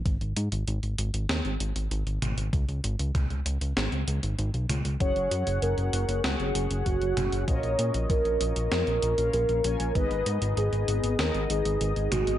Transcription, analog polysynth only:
\new Staff \with { instrumentName = "Analog polysynth" } { \time 4/4 \key gis \dorian \tempo 4 = 97 r1 | r1 | <cis' fis' gis' cis'' fis''>2 <cis' fis' gis' cis'' fis''>2 | <cis' eis' ais' cis'' dis''>2~ <cis' eis' ais' cis'' dis''>8. <cis' eis' ais' cis'' eis''>8. <cis' eis' ais' cis'' gis''>8 |
<b dis' gis' b' dis''>2 <b dis' gis' dis''>2 | }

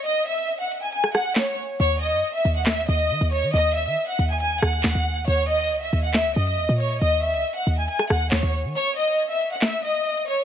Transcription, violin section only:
\new Staff \with { instrumentName = "Violin section" } { \time 4/4 \key ees \phrygian \tempo 4 = 138 ees''8 fes''8. ges''8 aes''16 aes''8 ges''8 des''8 r8 | des''8 ees''8. fes''8 ges''16 fes''8 ees''4 des''8 | ees''8 fes''8. ges''8 aes''16 aes''8 ges''4. | des''8 ees''8. fes''8 ges''16 fes''8 ees''4 des''8 |
ees''8 fes''8. ges''8 aes''16 aes''8 ges''8 des''8 r8 | des''8 ees''8. fes''8 ges''16 fes''8 ees''4 des''8 | }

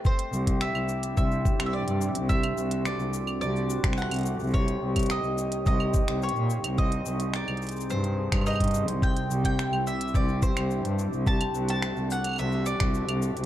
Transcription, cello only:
\new Staff \with { instrumentName = "Cello" } { \clef bass \time 4/4 \key c \lydian \tempo 4 = 107 r8 c,8. c,16 r8 c,8. c,16 r16 g,16 r16 c,16~ | c,8 c,8. c,16 r8 c,8. c,16 r16 c,16 r16 c,16~ | c,8 c,8. c,16 r8 c,8. c,16 r16 bes,16 r16 c,16~ | c,8 c,8. c,16 r8 g,8. g,16 r16 g,8 c,16 |
r8 c,8. c,16 r8 c,8. c,16 r16 g,16 r16 c,16~ | c,8 c,8. c,16 r8 c,8. c,16 r16 c,16 r16 c,16 | }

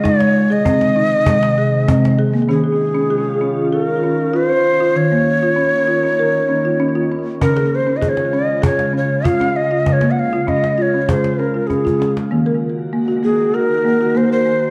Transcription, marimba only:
<<
  \new Staff \with { instrumentName = "Marimba" } { \time 4/4 \key des \major \tempo 4 = 98 ees'16 aes8 aes'16 c'8 ees'8 aes8 aes'8 c'8 aes'16 bes16 | des'16 aes'8 des'16 aes'8 des'8 aes'8 des'8 f'16 des'8 f'16~ | f'16 bes8 f'16 des'8 f'16 des'16 bes'8 des'16 f'16 des'16 f'16 des'8 | des'16 aes'8 des'16 aes'8 des'8 aes'8 des'8 f'16 des'8 f'16~ |
f'16 bes8 f'16 des'8 f'16 des'16 aes'8 des'16 f'16 des'16 f'16 des'8 | bes16 bes'8 r16 bes16 ges'16 bes8 ges'8 bes16 ges'16 bes16 bes'16 bes8 | }
  \new Staff \with { instrumentName = "Marimba" } { \clef bass \time 4/4 \key des \major aes1 | ees1 | ees1 | des1 |
des1 | ees1 | }
>>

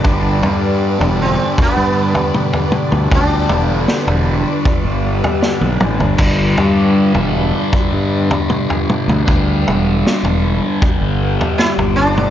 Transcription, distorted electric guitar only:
\new Staff \with { instrumentName = "Distorted electric guitar" } { \clef bass \time 4/4 \key g \major \tempo 4 = 78 <g, d g>1 | <g, d g>1 | <g, d g>1 | <g, d g>1 | }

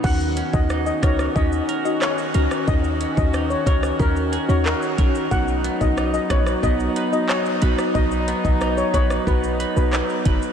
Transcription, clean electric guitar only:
\new Staff \with { instrumentName = "Clean electric guitar" } { \time 4/4 \key ees \minor \tempo 4 = 91 ees8 des'8 ees'8 bes'8 des'8 bes'8 ees'8 bes'8 | ees8 des'8 ees'8 bes'8 des'8 aes'16 bes'16 ees'8 bes'8 | r8 b8 dis'8 b'8 b8 b'8 dis'8 b'8~ | b'8 b8 dis'8 b'8 b8 b'8 dis'8 b'8 | }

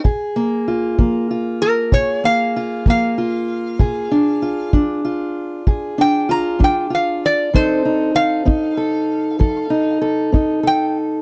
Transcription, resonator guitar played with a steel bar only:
\new Staff \with { instrumentName = "Resonator guitar played with a steel bar" } { \time 12/8 \key bes \mixolydian \tempo 4. = 64 r2 r8 bes'8 des''8 f''4 f''4.~ | f''4. r2 g''8 bes''8 g''8 f''8 d''8 | c''4 f''2. r4 g''8 r8 | }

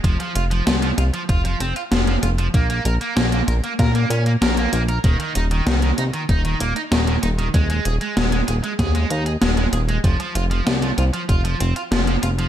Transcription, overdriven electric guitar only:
\new Staff \with { instrumentName = "Overdriven electric guitar" } { \time 4/4 \key f \minor \tempo 4 = 96 f16 f16 f'16 f16 f16 f16 f'16 f16 f'16 f16 c'16 f'16 f16 f16 f'16 f16 | bes16 bes16 bes'16 bes16 bes16 bes16 bes'16 bes16 bes'16 bes16 des'16 bes16 bes'16 bes16 bes16 bes'16 | ees16 ees16 ees'16 ees16 ees16 ees16 ees'16 ees16 ees'16 ees16 bes16 ees'16 ees16 ees16 ees'16 ees16 | aes16 aes16 aes'16 aes16 aes16 aes16 aes'16 aes16 aes'16 aes16 ees'16 aes'16 aes16 aes16 aes'16 aes16 |
f16 f16 f'16 f16 f16 f16 f'16 f16 f'16 f16 c'16 f'16 f16 f16 f'16 f16 | }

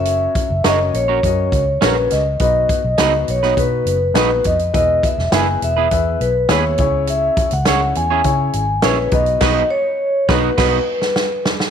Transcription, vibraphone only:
\new Staff \with { instrumentName = "Vibraphone" } { \time 4/4 \key b \major \tempo 4 = 103 e''4 dis''8 cis''4. b'8 dis''8 | dis''4. cis''8 b'4 b'8 dis''8 | dis''8 e''8 gis''8 e''4 b'8 cis''4 | e''8. fis''8. gis''4. b'8 dis''8~ |
dis''8 cis''4 b'8 b'4. r8 | }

